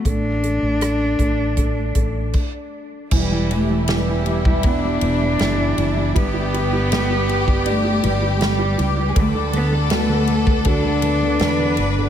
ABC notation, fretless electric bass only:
X:1
M:4/4
L:1/16
Q:1/4=79
K:Edor
V:1 name="Fretless electric bass" clef=bass
A,,,3 A,,,3 A,,,4 A,,,2 z4 | E,,,8- E,,,2 E,,,2 F,,,2 F,,,2 | G,,,8- G,,,2 G,,,4 C,,2 | D,,8 D,,4 E,,2 G,,,2 |]